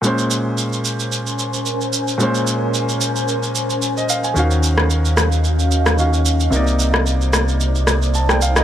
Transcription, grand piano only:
0, 0, Header, 1, 2, 480
1, 0, Start_track
1, 0, Key_signature, -5, "minor"
1, 0, Tempo, 540541
1, 33, Time_signature, 4, 2, 24, 8
1, 7671, End_track
2, 0, Start_track
2, 0, Title_t, "Grand piano"
2, 0, Program_c, 0, 0
2, 15, Note_on_c, 0, 46, 73
2, 30, Note_on_c, 0, 56, 68
2, 45, Note_on_c, 0, 61, 67
2, 60, Note_on_c, 0, 72, 77
2, 226, Control_c, 0, 64, 127
2, 1908, Note_off_c, 0, 46, 0
2, 1916, Note_off_c, 0, 56, 0
2, 1923, Note_off_c, 0, 61, 0
2, 1931, Note_off_c, 0, 72, 0
2, 1935, Note_on_c, 0, 46, 76
2, 1950, Note_on_c, 0, 56, 67
2, 1965, Note_on_c, 0, 61, 67
2, 1980, Note_on_c, 0, 72, 80
2, 3529, Note_on_c, 0, 75, 66
2, 3630, Note_off_c, 0, 75, 0
2, 3637, Note_on_c, 0, 77, 70
2, 3760, Note_off_c, 0, 77, 0
2, 3768, Note_on_c, 0, 80, 66
2, 3828, Note_off_c, 0, 46, 0
2, 3836, Note_off_c, 0, 56, 0
2, 3843, Note_off_c, 0, 61, 0
2, 3851, Note_off_c, 0, 72, 0
2, 3854, Note_on_c, 0, 51, 74
2, 3868, Note_on_c, 0, 61, 71
2, 3882, Control_c, 0, 64, 0
2, 3883, Note_on_c, 0, 66, 67
2, 3898, Note_on_c, 0, 77, 82
2, 3994, Note_off_c, 0, 80, 0
2, 4045, Control_c, 0, 64, 127
2, 5274, Note_off_c, 0, 51, 0
2, 5282, Note_off_c, 0, 61, 0
2, 5289, Note_off_c, 0, 66, 0
2, 5297, Note_off_c, 0, 77, 0
2, 5306, Note_on_c, 0, 51, 58
2, 5313, Note_on_c, 0, 61, 54
2, 5321, Note_on_c, 0, 66, 50
2, 5328, Note_on_c, 0, 77, 61
2, 5775, Note_on_c, 0, 48, 74
2, 5789, Note_off_c, 0, 51, 0
2, 5790, Note_on_c, 0, 58, 72
2, 5793, Note_off_c, 0, 61, 0
2, 5797, Note_off_c, 0, 66, 0
2, 5800, Note_off_c, 0, 77, 0
2, 5803, Control_c, 0, 64, 0
2, 5805, Note_on_c, 0, 63, 70
2, 5820, Note_on_c, 0, 74, 80
2, 5976, Control_c, 0, 64, 127
2, 7218, Note_off_c, 0, 74, 0
2, 7238, Note_on_c, 0, 81, 64
2, 7361, Note_off_c, 0, 81, 0
2, 7370, Note_on_c, 0, 79, 71
2, 7470, Note_off_c, 0, 79, 0
2, 7479, Note_on_c, 0, 77, 70
2, 7601, Note_off_c, 0, 77, 0
2, 7611, Note_on_c, 0, 75, 62
2, 7669, Note_off_c, 0, 48, 0
2, 7671, Note_off_c, 0, 58, 0
2, 7671, Note_off_c, 0, 63, 0
2, 7671, Note_off_c, 0, 75, 0
2, 7671, End_track
0, 0, End_of_file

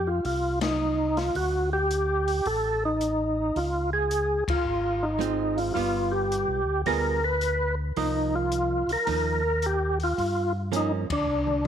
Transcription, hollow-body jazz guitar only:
0, 0, Header, 1, 2, 480
1, 0, Start_track
1, 0, Tempo, 551471
1, 1172, Time_signature, 4, 2, 24, 8
1, 10159, End_track
2, 0, Start_track
2, 0, Title_t, "Hollow-body jazz guitar"
2, 0, Program_c, 0, 26
2, 4516, Note_on_c, 0, 56, 67
2, 4525, Note_on_c, 0, 60, 73
2, 4528, Note_on_c, 0, 65, 78
2, 5000, Note_off_c, 0, 56, 0
2, 5003, Note_on_c, 0, 55, 70
2, 5004, Note_off_c, 0, 65, 0
2, 5008, Note_off_c, 0, 60, 0
2, 5012, Note_on_c, 0, 59, 71
2, 5015, Note_on_c, 0, 65, 80
2, 5745, Note_off_c, 0, 55, 0
2, 5749, Note_off_c, 0, 59, 0
2, 5750, Note_off_c, 0, 65, 0
2, 5972, Note_on_c, 0, 55, 55
2, 5977, Note_on_c, 0, 59, 65
2, 5984, Note_on_c, 0, 65, 72
2, 5985, Note_on_c, 0, 68, 69
2, 6261, Note_off_c, 0, 55, 0
2, 6263, Note_off_c, 0, 59, 0
2, 6267, Note_off_c, 0, 65, 0
2, 6267, Note_off_c, 0, 68, 0
2, 6936, Note_on_c, 0, 53, 53
2, 6938, Note_on_c, 0, 58, 55
2, 6945, Note_on_c, 0, 63, 65
2, 7671, Note_off_c, 0, 53, 0
2, 7672, Note_off_c, 0, 58, 0
2, 7676, Note_off_c, 0, 63, 0
2, 7895, Note_on_c, 0, 53, 56
2, 7895, Note_on_c, 0, 58, 57
2, 7903, Note_on_c, 0, 63, 72
2, 8183, Note_off_c, 0, 53, 0
2, 8183, Note_off_c, 0, 58, 0
2, 8187, Note_off_c, 0, 63, 0
2, 9328, Note_on_c, 0, 53, 63
2, 9333, Note_on_c, 0, 58, 69
2, 9335, Note_on_c, 0, 61, 67
2, 9620, Note_off_c, 0, 53, 0
2, 9622, Note_off_c, 0, 58, 0
2, 9623, Note_off_c, 0, 61, 0
2, 10159, End_track
0, 0, End_of_file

